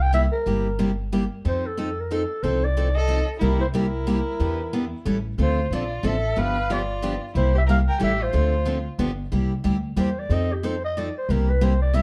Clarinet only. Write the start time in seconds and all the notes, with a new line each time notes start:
0.02 G5
0.14 E5
0.32 A#4
1.48 C5
1.66 A4
2.00 A#4
2.14 A4
2.43 C5
2.64 D5
2.96 D#5
3.41 A#4
3.61 C5
3.75 A#4
5.42 C5
5.74 D5
6.07 E5
6.39 F5
6.72 D5
7.37 C5
7.58 E5
7.70 F5
7.89 G5
8.03 E5
8.22 C5
9.99 C5
10.19 D5
10.33 D#5
10.53 G4
10.65 C5
10.84 D#5
10.98 D5
11.17 C5
11.31 A#4
11.49 B4
11.63 C5
11.82 D5
11.95 E5